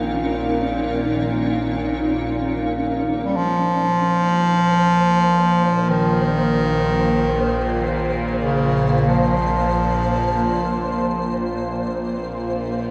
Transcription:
0.00 3.31 A#1 medium
0.00 3.32 A#2 medium
0.00 3.33 C#4 medium
0.00 4.98 D#4 medium
0.00 5.65 A#4 medium
0.00 7.31 F5 medium
3.25 3.38 G3 medium
3.32 12.91 A#1 medium
3.32 12.91 A#2 medium
3.32 12.91 A#3 medium
3.32 12.91 C5 medium
3.37 5.91 F3 loud
5.56 12.91 C5 medium
5.74 12.91 F4 medium
5.89 8.17 D#3 loud
8.42 9.10 C#3 medium
9.08 11.63 F3 medium

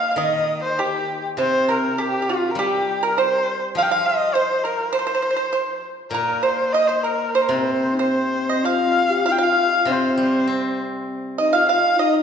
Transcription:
0.00 0.17 A#2 soft
0.00 0.10 F5 medium
0.00 0.17 F5 medium
0.11 0.17 F5 medium
0.16 1.98 D#3 soft
0.16 0.75 D#5 medium
0.16 0.60 D#5 medium
0.63 0.81 C5 medium
0.79 1.21 G4 medium
0.79 1.25 G4 medium
1.37 3.17 C3 medium
1.37 1.67 C5 medium
1.37 1.72 C5 medium
1.69 1.97 A#4 medium
1.69 2.03 A#4 medium
1.98 2.20 G4 medium
1.98 2.30 G4 medium
2.22 2.29 G4 soft
2.29 2.52 F4 medium
2.29 2.57 F4 medium
2.51 2.61 A#4 medium
2.55 4.33 G3 soft
2.55 3.00 G4 medium
2.60 3.06 G4 medium
3.03 3.17 A#4 medium
3.03 3.20 A#4 medium
3.18 3.59 C5 medium
3.18 3.62 C5 medium
3.75 5.52 F3 medium
3.75 3.84 F5 medium
3.75 3.90 F5 medium
3.82 3.92 G5 medium
3.90 4.07 F5 medium
3.90 4.32 F5 medium
4.06 4.35 D#5 medium
4.34 4.65 C5 medium
4.34 4.62 C5 medium
4.63 4.96 A#4 medium
4.63 4.92 A#4 medium
4.93 4.98 C5 medium
4.93 5.83 C5 medium
4.99 5.05 C5 soft
5.07 5.13 C5 medium
5.15 5.21 C5 medium
5.22 5.29 C5 medium
5.31 5.35 C5 soft
5.36 5.44 C5 medium
5.53 5.81 C5 medium
6.11 7.48 A#2 medium
6.11 6.44 A#4 medium
6.11 6.42 A#4 medium
6.43 6.71 C5 medium
6.43 6.74 C5 medium
6.72 6.88 D#5 medium
6.87 7.05 C5 medium
6.87 7.03 C5 medium
7.03 7.36 A#4 medium
7.03 7.33 A#4 medium
7.34 7.43 C5 medium
7.34 7.48 C5 medium
7.42 7.50 A#4 medium
7.49 9.39 C3 medium
7.49 7.72 A#4 medium
7.49 7.99 C5 medium
7.72 7.98 C5 medium
7.92 8.02 D#4 soft
7.99 8.65 C4 medium
7.99 8.44 C5 medium
7.99 8.66 C5 medium
8.49 8.63 D#5 medium
8.64 9.12 F4 medium
8.64 9.26 F5 medium
8.64 9.22 F5 medium
9.10 9.27 G4 medium
9.26 9.33 D#4 medium
9.26 9.29 F4 medium
9.26 9.37 F5 medium
9.26 9.33 F5 medium
9.32 9.38 F4 medium
9.32 9.44 G5 medium
9.38 9.83 F4 medium
9.38 9.67 F5 medium
9.43 9.93 F5 medium
9.67 9.83 D#5 medium
9.85 11.67 C3 medium
9.85 9.92 D#4 medium
9.85 10.74 C5 medium
9.91 10.44 C4 medium
9.91 10.80 C5 medium
10.17 11.38 G3 soft
10.47 10.75 C4 soft
10.47 11.68 C4 soft
11.38 11.55 D#4 medium
11.38 11.52 D#5 medium
11.38 11.56 D#5 medium
11.53 11.68 F4 medium
11.53 11.67 F5 medium
11.53 11.68 F5 medium
11.69 11.96 F4 medium
11.69 12.01 F5 medium
11.69 11.96 F5 medium
11.98 12.23 D#4 medium
11.98 12.23 D#5 medium
11.98 12.22 D#5 medium

